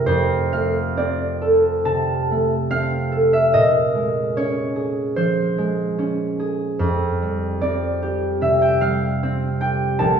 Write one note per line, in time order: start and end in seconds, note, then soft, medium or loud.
0.00 0.52 A3 soft
0.00 0.96 C4 soft
0.00 0.18 A4 medium
0.06 3.57 F2 medium
0.06 3.96 C5 loud
0.53 2.30 A3 soft
0.53 2.69 F5 medium
0.97 2.69 C4 medium
0.97 3.56 D5 medium
1.42 3.10 A4 medium
1.85 3.56 C3 medium
1.85 3.56 A5 medium
2.31 3.57 A3 soft
2.70 6.60 C4 medium
2.70 6.61 F5 loud
3.12 3.56 A4 soft
3.33 3.67 E5 medium
3.54 6.83 A#2 medium
3.54 4.93 D#5 loud
3.95 5.57 G#3 medium
4.37 5.97 C#4 medium
4.37 6.84 C#5 medium
4.76 6.38 G#4 medium
5.16 9.07 F3 medium
5.16 9.06 C5 medium
5.58 6.83 G#3 soft
5.99 6.83 C#4 medium
6.39 6.83 G#4 medium
6.79 10.02 F2 medium
7.22 8.80 G3 soft
7.61 9.22 C4 medium
7.61 8.97 D5 medium
8.03 9.60 G4 medium
8.41 10.03 C3 soft
8.41 10.03 E5 medium
8.62 8.95 G5 medium
8.81 10.03 G3 soft
8.81 10.20 F5 medium
9.23 10.20 C4 medium
9.61 10.03 G4 medium
9.61 10.03 G5 medium
9.99 10.20 A#1 medium
9.99 10.20 A5 loud